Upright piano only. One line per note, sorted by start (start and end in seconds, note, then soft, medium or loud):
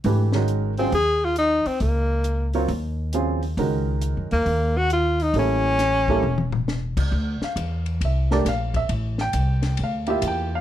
0.05 0.31 E3 medium
0.05 0.31 A3 medium
0.05 0.31 D4 medium
0.05 0.31 G4 medium
0.05 0.31 B4 medium
0.34 0.72 D#3 medium
0.34 0.72 G#3 medium
0.34 0.72 C#4 medium
0.34 0.72 F#4 medium
0.34 0.72 A#4 medium
0.79 0.92 C#3 medium
0.79 0.92 F#3 medium
0.79 0.92 C4 medium
0.79 0.92 F4 medium
0.79 0.92 G#4 medium
2.55 2.68 F#3 medium
2.55 2.68 C4 medium
2.55 2.68 F4 medium
2.55 2.68 A#4 medium
2.55 2.68 C#5 medium
3.14 3.40 C#3 medium
3.14 3.40 F#3 medium
3.14 3.40 C4 medium
3.14 3.41 F4 medium
3.14 3.40 G#4 medium
3.59 4.82 D#3 medium
3.59 4.82 G#3 medium
3.59 4.82 C#4 medium
3.59 4.82 F#4 medium
3.59 4.82 A#4 medium
5.36 6.03 G3 soft
5.36 6.03 A#3 medium
5.36 6.03 C#4 medium
5.36 6.03 E4 medium
5.36 6.04 A4 medium
6.10 6.23 G3 medium
6.10 6.23 A#3 medium
6.10 6.23 C#4 medium
6.10 6.23 E4 medium
6.10 6.23 A4 medium
7.44 7.98 F5 medium
8.05 8.32 E5 medium
8.32 8.45 A3 medium
8.32 8.45 D4 medium
8.32 8.45 G4 medium
8.32 8.45 A#4 medium
8.32 8.46 D5 medium
8.49 8.75 F5 medium
8.76 8.90 E5 medium
9.21 9.76 G5 loud
9.83 10.10 F5 medium
10.07 10.61 A#3 medium
10.07 10.61 E4 medium
10.07 10.61 F4 medium
10.07 10.61 G4 medium
10.07 10.24 E5 medium
10.27 10.54 G5 medium
10.55 10.61 F5 medium